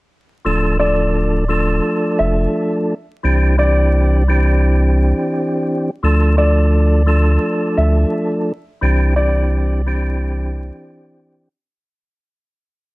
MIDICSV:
0, 0, Header, 1, 4, 480
1, 0, Start_track
1, 0, Key_signature, -1, "minor"
1, 0, Tempo, 697674
1, 308, Time_signature, 4, 2, 24, 8
1, 8909, End_track
2, 0, Start_track
2, 0, Title_t, "Upright piano"
2, 0, Program_c, 0, 0
2, 546, Note_on_c, 0, 74, 74
2, 1479, Note_off_c, 0, 74, 0
2, 1506, Note_on_c, 0, 76, 78
2, 1855, Note_off_c, 0, 76, 0
2, 2468, Note_on_c, 0, 74, 88
2, 3291, Note_off_c, 0, 74, 0
2, 4388, Note_on_c, 0, 74, 80
2, 5321, Note_off_c, 0, 74, 0
2, 5349, Note_on_c, 0, 76, 75
2, 5697, Note_off_c, 0, 76, 0
2, 6304, Note_on_c, 0, 74, 83
2, 7129, Note_off_c, 0, 74, 0
2, 8909, End_track
3, 0, Start_track
3, 0, Title_t, "Tonewheel organ"
3, 0, Program_c, 1, 16
3, 308, Note_on_c, 1, 53, 93
3, 312, Note_on_c, 1, 57, 90
3, 316, Note_on_c, 1, 62, 83
3, 319, Note_on_c, 1, 69, 104
3, 530, Note_off_c, 1, 53, 0
3, 532, Note_off_c, 1, 57, 0
3, 534, Note_off_c, 1, 62, 0
3, 536, Note_off_c, 1, 69, 0
3, 542, Note_on_c, 1, 53, 101
3, 546, Note_on_c, 1, 57, 89
3, 550, Note_on_c, 1, 62, 86
3, 554, Note_on_c, 1, 69, 103
3, 990, Note_off_c, 1, 53, 0
3, 992, Note_off_c, 1, 57, 0
3, 994, Note_off_c, 1, 62, 0
3, 996, Note_off_c, 1, 69, 0
3, 1021, Note_on_c, 1, 53, 85
3, 1025, Note_on_c, 1, 57, 83
3, 1029, Note_on_c, 1, 62, 87
3, 1033, Note_on_c, 1, 69, 105
3, 2021, Note_off_c, 1, 53, 0
3, 2023, Note_off_c, 1, 57, 0
3, 2025, Note_off_c, 1, 62, 0
3, 2027, Note_off_c, 1, 69, 0
3, 2224, Note_on_c, 1, 52, 94
3, 2228, Note_on_c, 1, 60, 84
3, 2231, Note_on_c, 1, 62, 87
3, 2236, Note_on_c, 1, 67, 100
3, 2448, Note_off_c, 1, 52, 0
3, 2450, Note_off_c, 1, 60, 0
3, 2452, Note_off_c, 1, 62, 0
3, 2454, Note_off_c, 1, 67, 0
3, 2462, Note_on_c, 1, 52, 97
3, 2466, Note_on_c, 1, 60, 95
3, 2470, Note_on_c, 1, 62, 90
3, 2474, Note_on_c, 1, 67, 109
3, 2910, Note_off_c, 1, 52, 0
3, 2912, Note_off_c, 1, 60, 0
3, 2914, Note_off_c, 1, 62, 0
3, 2916, Note_off_c, 1, 67, 0
3, 2944, Note_on_c, 1, 52, 96
3, 2948, Note_on_c, 1, 60, 86
3, 2952, Note_on_c, 1, 62, 90
3, 2956, Note_on_c, 1, 67, 104
3, 4059, Note_off_c, 1, 52, 0
3, 4060, Note_off_c, 1, 60, 0
3, 4062, Note_off_c, 1, 62, 0
3, 4065, Note_off_c, 1, 67, 0
3, 4148, Note_on_c, 1, 53, 91
3, 4152, Note_on_c, 1, 57, 90
3, 4156, Note_on_c, 1, 62, 83
3, 4159, Note_on_c, 1, 69, 104
3, 4370, Note_off_c, 1, 53, 0
3, 4372, Note_off_c, 1, 57, 0
3, 4374, Note_off_c, 1, 62, 0
3, 4376, Note_off_c, 1, 69, 0
3, 4382, Note_on_c, 1, 53, 101
3, 4385, Note_on_c, 1, 57, 90
3, 4389, Note_on_c, 1, 62, 86
3, 4393, Note_on_c, 1, 69, 106
3, 4830, Note_off_c, 1, 53, 0
3, 4831, Note_off_c, 1, 57, 0
3, 4833, Note_off_c, 1, 62, 0
3, 4835, Note_off_c, 1, 69, 0
3, 4859, Note_on_c, 1, 53, 91
3, 4863, Note_on_c, 1, 57, 80
3, 4867, Note_on_c, 1, 62, 85
3, 4871, Note_on_c, 1, 69, 103
3, 5860, Note_off_c, 1, 53, 0
3, 5862, Note_off_c, 1, 57, 0
3, 5864, Note_off_c, 1, 62, 0
3, 5866, Note_off_c, 1, 69, 0
3, 6064, Note_on_c, 1, 52, 95
3, 6068, Note_on_c, 1, 60, 87
3, 6071, Note_on_c, 1, 62, 89
3, 6075, Note_on_c, 1, 67, 101
3, 6288, Note_off_c, 1, 52, 0
3, 6290, Note_off_c, 1, 60, 0
3, 6292, Note_off_c, 1, 62, 0
3, 6294, Note_off_c, 1, 67, 0
3, 6302, Note_on_c, 1, 52, 94
3, 6306, Note_on_c, 1, 60, 96
3, 6310, Note_on_c, 1, 62, 92
3, 6314, Note_on_c, 1, 67, 104
3, 6750, Note_off_c, 1, 52, 0
3, 6752, Note_off_c, 1, 60, 0
3, 6754, Note_off_c, 1, 62, 0
3, 6756, Note_off_c, 1, 67, 0
3, 6784, Note_on_c, 1, 52, 95
3, 6788, Note_on_c, 1, 60, 84
3, 6791, Note_on_c, 1, 62, 86
3, 6795, Note_on_c, 1, 67, 103
3, 7898, Note_off_c, 1, 52, 0
3, 7900, Note_off_c, 1, 60, 0
3, 7902, Note_off_c, 1, 62, 0
3, 7904, Note_off_c, 1, 67, 0
3, 8909, End_track
4, 0, Start_track
4, 0, Title_t, "Sub bass"
4, 0, Program_c, 2, 38
4, 311, Note_on_c, 2, 26, 105
4, 1242, Note_off_c, 2, 26, 0
4, 1511, Note_on_c, 2, 29, 93
4, 1700, Note_off_c, 2, 29, 0
4, 2231, Note_on_c, 2, 36, 102
4, 3533, Note_off_c, 2, 36, 0
4, 4151, Note_on_c, 2, 38, 108
4, 5082, Note_off_c, 2, 38, 0
4, 5351, Note_on_c, 2, 38, 93
4, 5540, Note_off_c, 2, 38, 0
4, 6070, Note_on_c, 2, 36, 115
4, 7372, Note_off_c, 2, 36, 0
4, 8909, End_track
0, 0, End_of_file